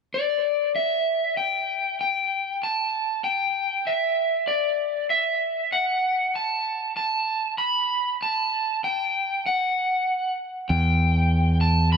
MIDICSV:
0, 0, Header, 1, 3, 480
1, 0, Start_track
1, 0, Key_signature, 1, "minor"
1, 0, Tempo, 620476
1, 587, Time_signature, 4, 2, 24, 8
1, 9260, End_track
2, 0, Start_track
2, 0, Title_t, "Electric slide guitar"
2, 0, Program_c, 0, 29
2, 109, Note_on_c, 0, 74, 46
2, 581, Note_off_c, 0, 74, 0
2, 585, Note_on_c, 0, 76, 55
2, 1034, Note_off_c, 0, 76, 0
2, 1062, Note_on_c, 0, 79, 49
2, 1513, Note_off_c, 0, 79, 0
2, 1553, Note_on_c, 0, 79, 49
2, 1999, Note_off_c, 0, 79, 0
2, 2038, Note_on_c, 0, 81, 55
2, 2504, Note_off_c, 0, 81, 0
2, 2507, Note_on_c, 0, 79, 57
2, 2992, Note_on_c, 0, 76, 51
2, 3001, Note_off_c, 0, 79, 0
2, 3462, Note_on_c, 0, 74, 48
2, 3484, Note_off_c, 0, 76, 0
2, 3914, Note_off_c, 0, 74, 0
2, 3947, Note_on_c, 0, 76, 56
2, 4429, Note_on_c, 0, 78, 60
2, 4442, Note_off_c, 0, 76, 0
2, 4917, Note_on_c, 0, 81, 59
2, 4923, Note_off_c, 0, 78, 0
2, 5362, Note_off_c, 0, 81, 0
2, 5389, Note_on_c, 0, 81, 62
2, 5863, Note_off_c, 0, 81, 0
2, 5866, Note_on_c, 0, 83, 67
2, 6317, Note_off_c, 0, 83, 0
2, 6363, Note_on_c, 0, 81, 68
2, 6837, Note_off_c, 0, 81, 0
2, 6840, Note_on_c, 0, 79, 54
2, 7319, Note_off_c, 0, 79, 0
2, 7322, Note_on_c, 0, 78, 55
2, 8005, Note_off_c, 0, 78, 0
2, 8272, Note_on_c, 0, 79, 65
2, 8960, Note_off_c, 0, 79, 0
2, 8981, Note_on_c, 0, 81, 62
2, 9221, Note_off_c, 0, 81, 0
2, 9224, Note_on_c, 0, 83, 70
2, 9260, Note_off_c, 0, 83, 0
2, 9260, End_track
3, 0, Start_track
3, 0, Title_t, "Picked electric bass"
3, 0, Program_c, 1, 34
3, 8277, Note_on_c, 1, 40, 49
3, 9260, Note_off_c, 1, 40, 0
3, 9260, End_track
0, 0, End_of_file